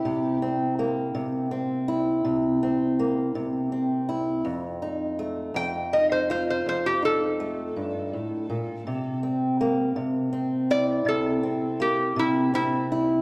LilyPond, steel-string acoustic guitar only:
\new Staff \with { instrumentName = "Steel-string acoustic guitar" } { \time 12/8 \key c \mixolydian \tempo 4. = 54 << { e'8 c'8 bes4 c'8 e'4 c'8 bes4 c'8 e'8 | r8 ees'8 a4 ees'8 f'4 ees'8 a2 | r8 c'8 bes4 c'8 e'4 c'8 bes4 c'8 e'8 | } \\ { c4. c4. c4. c4. | f,4. f,4. f,4. g,8 a,8 bes,8 | c4. c4. c4. c4. | } >> }